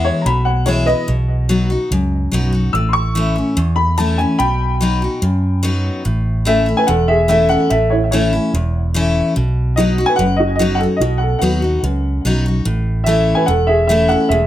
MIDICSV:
0, 0, Header, 1, 4, 480
1, 0, Start_track
1, 0, Tempo, 413223
1, 1260, Time_signature, 4, 2, 24, 8
1, 16806, End_track
2, 0, Start_track
2, 0, Title_t, "Upright piano"
2, 0, Program_c, 0, 0
2, 52, Note_on_c, 0, 73, 93
2, 250, Note_on_c, 0, 82, 68
2, 283, Note_off_c, 0, 82, 0
2, 288, Note_off_c, 0, 73, 0
2, 301, Note_on_c, 0, 83, 89
2, 523, Note_on_c, 0, 78, 88
2, 533, Note_off_c, 0, 83, 0
2, 764, Note_off_c, 0, 78, 0
2, 765, Note_on_c, 0, 73, 80
2, 996, Note_on_c, 0, 71, 86
2, 1004, Note_on_c, 0, 75, 97
2, 1005, Note_off_c, 0, 73, 0
2, 1230, Note_off_c, 0, 71, 0
2, 1245, Note_off_c, 0, 75, 0
2, 3171, Note_on_c, 0, 88, 91
2, 3354, Note_on_c, 0, 84, 61
2, 3391, Note_off_c, 0, 84, 0
2, 3405, Note_on_c, 0, 85, 99
2, 3411, Note_off_c, 0, 88, 0
2, 4348, Note_off_c, 0, 85, 0
2, 4364, Note_on_c, 0, 83, 101
2, 4609, Note_off_c, 0, 83, 0
2, 4620, Note_on_c, 0, 81, 79
2, 4854, Note_on_c, 0, 80, 95
2, 4857, Note_off_c, 0, 81, 0
2, 5092, Note_on_c, 0, 79, 95
2, 5094, Note_off_c, 0, 80, 0
2, 5094, Note_on_c, 0, 83, 110
2, 6496, Note_off_c, 0, 79, 0
2, 6500, Note_off_c, 0, 83, 0
2, 7516, Note_on_c, 0, 76, 87
2, 7529, Note_on_c, 0, 69, 67
2, 7856, Note_off_c, 0, 69, 0
2, 7864, Note_on_c, 0, 80, 110
2, 7881, Note_on_c, 0, 71, 86
2, 7885, Note_off_c, 0, 76, 0
2, 7978, Note_on_c, 0, 78, 96
2, 7979, Note_off_c, 0, 80, 0
2, 7988, Note_off_c, 0, 71, 0
2, 7999, Note_on_c, 0, 69, 80
2, 8219, Note_off_c, 0, 69, 0
2, 8223, Note_on_c, 0, 76, 98
2, 8232, Note_off_c, 0, 78, 0
2, 8241, Note_on_c, 0, 68, 78
2, 8450, Note_off_c, 0, 76, 0
2, 8460, Note_off_c, 0, 68, 0
2, 8468, Note_on_c, 0, 76, 94
2, 8482, Note_on_c, 0, 69, 76
2, 8701, Note_off_c, 0, 69, 0
2, 8703, Note_on_c, 0, 78, 100
2, 8717, Note_off_c, 0, 76, 0
2, 8728, Note_on_c, 0, 69, 77
2, 8944, Note_off_c, 0, 69, 0
2, 8944, Note_on_c, 0, 76, 84
2, 8955, Note_off_c, 0, 78, 0
2, 8971, Note_on_c, 0, 69, 71
2, 9177, Note_on_c, 0, 73, 71
2, 9185, Note_off_c, 0, 69, 0
2, 9195, Note_off_c, 0, 76, 0
2, 9203, Note_on_c, 0, 64, 59
2, 9337, Note_on_c, 0, 76, 55
2, 9346, Note_off_c, 0, 64, 0
2, 9348, Note_off_c, 0, 73, 0
2, 9421, Note_on_c, 0, 73, 69
2, 9425, Note_off_c, 0, 76, 0
2, 9446, Note_on_c, 0, 64, 55
2, 9872, Note_off_c, 0, 73, 0
2, 9885, Note_off_c, 0, 64, 0
2, 11336, Note_on_c, 0, 75, 85
2, 11360, Note_on_c, 0, 66, 70
2, 11677, Note_off_c, 0, 75, 0
2, 11685, Note_on_c, 0, 80, 121
2, 11690, Note_off_c, 0, 66, 0
2, 11721, Note_on_c, 0, 71, 80
2, 11743, Note_off_c, 0, 80, 0
2, 11772, Note_off_c, 0, 71, 0
2, 11801, Note_on_c, 0, 78, 113
2, 11839, Note_on_c, 0, 71, 74
2, 12039, Note_on_c, 0, 75, 86
2, 12057, Note_off_c, 0, 71, 0
2, 12062, Note_off_c, 0, 78, 0
2, 12080, Note_on_c, 0, 66, 73
2, 12244, Note_off_c, 0, 75, 0
2, 12261, Note_on_c, 0, 75, 85
2, 12291, Note_off_c, 0, 66, 0
2, 12309, Note_on_c, 0, 66, 62
2, 12486, Note_on_c, 0, 78, 98
2, 12531, Note_off_c, 0, 66, 0
2, 12532, Note_off_c, 0, 75, 0
2, 12539, Note_on_c, 0, 69, 80
2, 12547, Note_off_c, 0, 78, 0
2, 12597, Note_off_c, 0, 69, 0
2, 12736, Note_on_c, 0, 75, 80
2, 12789, Note_on_c, 0, 66, 65
2, 12986, Note_on_c, 0, 78, 88
2, 13009, Note_off_c, 0, 75, 0
2, 13011, Note_off_c, 0, 66, 0
2, 13029, Note_on_c, 0, 69, 61
2, 13211, Note_off_c, 0, 78, 0
2, 13228, Note_on_c, 0, 78, 84
2, 13251, Note_off_c, 0, 69, 0
2, 13264, Note_on_c, 0, 71, 61
2, 13691, Note_off_c, 0, 78, 0
2, 13710, Note_off_c, 0, 71, 0
2, 15145, Note_on_c, 0, 76, 86
2, 15176, Note_on_c, 0, 69, 74
2, 15506, Note_on_c, 0, 80, 101
2, 15513, Note_off_c, 0, 69, 0
2, 15530, Note_on_c, 0, 71, 86
2, 15534, Note_off_c, 0, 76, 0
2, 15634, Note_off_c, 0, 80, 0
2, 15636, Note_on_c, 0, 78, 94
2, 15647, Note_off_c, 0, 71, 0
2, 15656, Note_on_c, 0, 69, 74
2, 15877, Note_on_c, 0, 76, 93
2, 15881, Note_off_c, 0, 69, 0
2, 15896, Note_off_c, 0, 78, 0
2, 15901, Note_on_c, 0, 68, 76
2, 16097, Note_off_c, 0, 76, 0
2, 16114, Note_on_c, 0, 76, 91
2, 16124, Note_off_c, 0, 68, 0
2, 16142, Note_on_c, 0, 69, 66
2, 16361, Note_on_c, 0, 78, 103
2, 16364, Note_off_c, 0, 69, 0
2, 16375, Note_off_c, 0, 76, 0
2, 16385, Note_on_c, 0, 69, 66
2, 16598, Note_on_c, 0, 76, 87
2, 16606, Note_off_c, 0, 69, 0
2, 16618, Note_off_c, 0, 78, 0
2, 16618, Note_on_c, 0, 68, 69
2, 16806, Note_off_c, 0, 68, 0
2, 16806, Note_off_c, 0, 76, 0
2, 16806, End_track
3, 0, Start_track
3, 0, Title_t, "Steel-string acoustic guitar"
3, 0, Program_c, 1, 25
3, 0, Note_on_c, 1, 40, 75
3, 0, Note_on_c, 1, 52, 83
3, 0, Note_on_c, 1, 56, 85
3, 0, Note_on_c, 1, 59, 82
3, 0, Note_on_c, 1, 64, 89
3, 247, Note_off_c, 1, 40, 0
3, 265, Note_off_c, 1, 52, 0
3, 271, Note_off_c, 1, 56, 0
3, 274, Note_off_c, 1, 59, 0
3, 280, Note_off_c, 1, 64, 0
3, 303, Note_on_c, 1, 47, 88
3, 764, Note_on_c, 1, 52, 84
3, 777, Note_on_c, 1, 56, 82
3, 787, Note_on_c, 1, 59, 88
3, 795, Note_on_c, 1, 64, 91
3, 1002, Note_off_c, 1, 64, 0
3, 1003, Note_off_c, 1, 52, 0
3, 1009, Note_off_c, 1, 56, 0
3, 1014, Note_off_c, 1, 59, 0
3, 1016, Note_on_c, 1, 64, 53
3, 1038, Note_on_c, 1, 59, 46
3, 1215, Note_off_c, 1, 47, 0
3, 1249, Note_off_c, 1, 64, 0
3, 1253, Note_on_c, 1, 47, 78
3, 1260, Note_off_c, 1, 59, 0
3, 1732, Note_on_c, 1, 54, 92
3, 1735, Note_on_c, 1, 59, 85
3, 1745, Note_on_c, 1, 63, 81
3, 1754, Note_on_c, 1, 66, 89
3, 1960, Note_off_c, 1, 66, 0
3, 1967, Note_off_c, 1, 54, 0
3, 1969, Note_off_c, 1, 59, 0
3, 1974, Note_off_c, 1, 63, 0
3, 1974, Note_on_c, 1, 66, 58
3, 1995, Note_on_c, 1, 63, 46
3, 2171, Note_off_c, 1, 47, 0
3, 2209, Note_off_c, 1, 66, 0
3, 2219, Note_off_c, 1, 63, 0
3, 2226, Note_on_c, 1, 42, 95
3, 2689, Note_on_c, 1, 54, 78
3, 2707, Note_on_c, 1, 59, 98
3, 2713, Note_on_c, 1, 63, 90
3, 2720, Note_on_c, 1, 66, 107
3, 2919, Note_off_c, 1, 66, 0
3, 2927, Note_off_c, 1, 54, 0
3, 2933, Note_on_c, 1, 66, 60
3, 2936, Note_off_c, 1, 59, 0
3, 2939, Note_off_c, 1, 63, 0
3, 2957, Note_on_c, 1, 63, 44
3, 3138, Note_off_c, 1, 42, 0
3, 3169, Note_off_c, 1, 66, 0
3, 3181, Note_off_c, 1, 63, 0
3, 3193, Note_on_c, 1, 45, 77
3, 3660, Note_on_c, 1, 52, 89
3, 3668, Note_on_c, 1, 57, 87
3, 3684, Note_on_c, 1, 61, 85
3, 3685, Note_on_c, 1, 64, 96
3, 3885, Note_off_c, 1, 64, 0
3, 3894, Note_off_c, 1, 52, 0
3, 3898, Note_off_c, 1, 57, 0
3, 3899, Note_on_c, 1, 64, 58
3, 3906, Note_off_c, 1, 61, 0
3, 3928, Note_on_c, 1, 61, 45
3, 4103, Note_off_c, 1, 45, 0
3, 4133, Note_off_c, 1, 64, 0
3, 4144, Note_on_c, 1, 40, 95
3, 4148, Note_off_c, 1, 61, 0
3, 4619, Note_on_c, 1, 52, 90
3, 4630, Note_on_c, 1, 57, 97
3, 4643, Note_on_c, 1, 61, 83
3, 4648, Note_on_c, 1, 64, 97
3, 4850, Note_off_c, 1, 64, 0
3, 4854, Note_off_c, 1, 52, 0
3, 4860, Note_off_c, 1, 57, 0
3, 4864, Note_on_c, 1, 64, 58
3, 4866, Note_off_c, 1, 61, 0
3, 4887, Note_on_c, 1, 61, 51
3, 5059, Note_off_c, 1, 40, 0
3, 5097, Note_off_c, 1, 64, 0
3, 5108, Note_off_c, 1, 61, 0
3, 5108, Note_on_c, 1, 47, 74
3, 5583, Note_on_c, 1, 54, 89
3, 5596, Note_on_c, 1, 59, 85
3, 5603, Note_on_c, 1, 63, 100
3, 5610, Note_on_c, 1, 66, 95
3, 5817, Note_off_c, 1, 54, 0
3, 5817, Note_off_c, 1, 66, 0
3, 5823, Note_off_c, 1, 59, 0
3, 5827, Note_off_c, 1, 63, 0
3, 5831, Note_on_c, 1, 66, 64
3, 5853, Note_on_c, 1, 63, 49
3, 6022, Note_off_c, 1, 47, 0
3, 6061, Note_off_c, 1, 66, 0
3, 6064, Note_on_c, 1, 42, 94
3, 6072, Note_off_c, 1, 63, 0
3, 6536, Note_on_c, 1, 54, 89
3, 6542, Note_on_c, 1, 59, 92
3, 6556, Note_on_c, 1, 63, 97
3, 6560, Note_on_c, 1, 66, 107
3, 6980, Note_off_c, 1, 42, 0
3, 7000, Note_off_c, 1, 54, 0
3, 7003, Note_off_c, 1, 59, 0
3, 7010, Note_off_c, 1, 63, 0
3, 7012, Note_off_c, 1, 66, 0
3, 7027, Note_on_c, 1, 45, 74
3, 7496, Note_on_c, 1, 52, 90
3, 7508, Note_on_c, 1, 57, 92
3, 7511, Note_on_c, 1, 61, 93
3, 7518, Note_on_c, 1, 64, 94
3, 7723, Note_off_c, 1, 64, 0
3, 7735, Note_off_c, 1, 52, 0
3, 7737, Note_on_c, 1, 64, 56
3, 7741, Note_off_c, 1, 57, 0
3, 7742, Note_off_c, 1, 61, 0
3, 7766, Note_on_c, 1, 61, 47
3, 7942, Note_off_c, 1, 45, 0
3, 7975, Note_off_c, 1, 64, 0
3, 7989, Note_off_c, 1, 61, 0
3, 7989, Note_on_c, 1, 40, 97
3, 8458, Note_on_c, 1, 52, 85
3, 8466, Note_on_c, 1, 57, 79
3, 8473, Note_on_c, 1, 61, 97
3, 8485, Note_on_c, 1, 64, 96
3, 8682, Note_off_c, 1, 64, 0
3, 8696, Note_off_c, 1, 52, 0
3, 8696, Note_on_c, 1, 64, 60
3, 8699, Note_off_c, 1, 57, 0
3, 8703, Note_off_c, 1, 61, 0
3, 8726, Note_on_c, 1, 61, 49
3, 8903, Note_off_c, 1, 40, 0
3, 8934, Note_off_c, 1, 64, 0
3, 8950, Note_off_c, 1, 61, 0
3, 8950, Note_on_c, 1, 45, 83
3, 9432, Note_on_c, 1, 52, 90
3, 9445, Note_on_c, 1, 57, 92
3, 9448, Note_on_c, 1, 61, 106
3, 9456, Note_on_c, 1, 64, 93
3, 9658, Note_off_c, 1, 64, 0
3, 9662, Note_off_c, 1, 52, 0
3, 9669, Note_off_c, 1, 57, 0
3, 9670, Note_off_c, 1, 61, 0
3, 9672, Note_on_c, 1, 64, 66
3, 9698, Note_on_c, 1, 61, 45
3, 9862, Note_off_c, 1, 45, 0
3, 9902, Note_off_c, 1, 64, 0
3, 9915, Note_off_c, 1, 61, 0
3, 9927, Note_on_c, 1, 40, 90
3, 10389, Note_on_c, 1, 52, 88
3, 10396, Note_on_c, 1, 57, 96
3, 10410, Note_on_c, 1, 61, 106
3, 10413, Note_on_c, 1, 64, 112
3, 10830, Note_off_c, 1, 40, 0
3, 10846, Note_off_c, 1, 52, 0
3, 10849, Note_off_c, 1, 57, 0
3, 10856, Note_off_c, 1, 61, 0
3, 10857, Note_off_c, 1, 64, 0
3, 10873, Note_on_c, 1, 47, 84
3, 11353, Note_on_c, 1, 54, 91
3, 11366, Note_on_c, 1, 59, 84
3, 11377, Note_on_c, 1, 63, 98
3, 11383, Note_on_c, 1, 66, 97
3, 11582, Note_off_c, 1, 54, 0
3, 11582, Note_off_c, 1, 66, 0
3, 11588, Note_off_c, 1, 59, 0
3, 11593, Note_off_c, 1, 63, 0
3, 11596, Note_on_c, 1, 66, 69
3, 11621, Note_on_c, 1, 63, 54
3, 11782, Note_off_c, 1, 47, 0
3, 11823, Note_off_c, 1, 66, 0
3, 11835, Note_off_c, 1, 63, 0
3, 11837, Note_on_c, 1, 42, 91
3, 12304, Note_on_c, 1, 54, 95
3, 12316, Note_on_c, 1, 59, 92
3, 12329, Note_on_c, 1, 63, 94
3, 12334, Note_on_c, 1, 66, 107
3, 12536, Note_off_c, 1, 54, 0
3, 12538, Note_off_c, 1, 66, 0
3, 12542, Note_off_c, 1, 59, 0
3, 12549, Note_off_c, 1, 63, 0
3, 12552, Note_on_c, 1, 66, 55
3, 12583, Note_on_c, 1, 63, 50
3, 12743, Note_off_c, 1, 42, 0
3, 12780, Note_off_c, 1, 66, 0
3, 12794, Note_on_c, 1, 47, 91
3, 12795, Note_off_c, 1, 63, 0
3, 13260, Note_on_c, 1, 54, 85
3, 13267, Note_on_c, 1, 59, 88
3, 13277, Note_on_c, 1, 63, 98
3, 13285, Note_on_c, 1, 66, 94
3, 13485, Note_off_c, 1, 66, 0
3, 13493, Note_off_c, 1, 54, 0
3, 13497, Note_off_c, 1, 59, 0
3, 13499, Note_on_c, 1, 66, 62
3, 13501, Note_off_c, 1, 63, 0
3, 13521, Note_on_c, 1, 63, 49
3, 13701, Note_off_c, 1, 47, 0
3, 13732, Note_off_c, 1, 66, 0
3, 13743, Note_off_c, 1, 63, 0
3, 13749, Note_on_c, 1, 42, 91
3, 14229, Note_on_c, 1, 54, 84
3, 14235, Note_on_c, 1, 59, 95
3, 14247, Note_on_c, 1, 63, 100
3, 14252, Note_on_c, 1, 66, 94
3, 14456, Note_off_c, 1, 54, 0
3, 14458, Note_off_c, 1, 66, 0
3, 14459, Note_off_c, 1, 59, 0
3, 14466, Note_off_c, 1, 63, 0
3, 14472, Note_on_c, 1, 66, 57
3, 14499, Note_on_c, 1, 63, 45
3, 14658, Note_off_c, 1, 42, 0
3, 14698, Note_off_c, 1, 66, 0
3, 14699, Note_on_c, 1, 45, 88
3, 14711, Note_off_c, 1, 63, 0
3, 15175, Note_on_c, 1, 52, 94
3, 15184, Note_on_c, 1, 57, 99
3, 15191, Note_on_c, 1, 61, 88
3, 15202, Note_on_c, 1, 64, 94
3, 15611, Note_off_c, 1, 45, 0
3, 15634, Note_off_c, 1, 52, 0
3, 15638, Note_off_c, 1, 57, 0
3, 15642, Note_off_c, 1, 61, 0
3, 15648, Note_off_c, 1, 64, 0
3, 15658, Note_on_c, 1, 40, 87
3, 16136, Note_on_c, 1, 52, 94
3, 16144, Note_on_c, 1, 57, 92
3, 16156, Note_on_c, 1, 61, 97
3, 16162, Note_on_c, 1, 64, 107
3, 16354, Note_off_c, 1, 64, 0
3, 16368, Note_off_c, 1, 52, 0
3, 16368, Note_on_c, 1, 64, 53
3, 16372, Note_off_c, 1, 57, 0
3, 16378, Note_off_c, 1, 61, 0
3, 16395, Note_on_c, 1, 61, 48
3, 16571, Note_off_c, 1, 40, 0
3, 16604, Note_off_c, 1, 64, 0
3, 16618, Note_off_c, 1, 61, 0
3, 16628, Note_on_c, 1, 40, 85
3, 16806, Note_off_c, 1, 40, 0
3, 16806, End_track
4, 0, Start_track
4, 0, Title_t, "Fingered electric bass"
4, 0, Program_c, 2, 33
4, 293, Note_on_c, 2, 35, 78
4, 1070, Note_off_c, 2, 35, 0
4, 1255, Note_on_c, 2, 35, 90
4, 2032, Note_off_c, 2, 35, 0
4, 2216, Note_on_c, 2, 37, 89
4, 2627, Note_off_c, 2, 37, 0
4, 2695, Note_on_c, 2, 35, 77
4, 3108, Note_off_c, 2, 35, 0
4, 3176, Note_on_c, 2, 33, 91
4, 3954, Note_off_c, 2, 33, 0
4, 4139, Note_on_c, 2, 40, 88
4, 4917, Note_off_c, 2, 40, 0
4, 5103, Note_on_c, 2, 35, 97
4, 5880, Note_off_c, 2, 35, 0
4, 6059, Note_on_c, 2, 42, 85
4, 6838, Note_off_c, 2, 42, 0
4, 7029, Note_on_c, 2, 33, 92
4, 7804, Note_off_c, 2, 33, 0
4, 7996, Note_on_c, 2, 28, 87
4, 8768, Note_off_c, 2, 28, 0
4, 8951, Note_on_c, 2, 33, 93
4, 9724, Note_off_c, 2, 33, 0
4, 9911, Note_on_c, 2, 28, 89
4, 10683, Note_off_c, 2, 28, 0
4, 10875, Note_on_c, 2, 35, 90
4, 11645, Note_off_c, 2, 35, 0
4, 11829, Note_on_c, 2, 30, 83
4, 12600, Note_off_c, 2, 30, 0
4, 12779, Note_on_c, 2, 35, 102
4, 13168, Note_off_c, 2, 35, 0
4, 13257, Note_on_c, 2, 39, 69
4, 13668, Note_off_c, 2, 39, 0
4, 13737, Note_on_c, 2, 37, 84
4, 14148, Note_off_c, 2, 37, 0
4, 14223, Note_on_c, 2, 35, 81
4, 14631, Note_off_c, 2, 35, 0
4, 14698, Note_on_c, 2, 33, 101
4, 15472, Note_off_c, 2, 33, 0
4, 15655, Note_on_c, 2, 28, 89
4, 16429, Note_off_c, 2, 28, 0
4, 16605, Note_on_c, 2, 28, 95
4, 16806, Note_off_c, 2, 28, 0
4, 16806, End_track
0, 0, End_of_file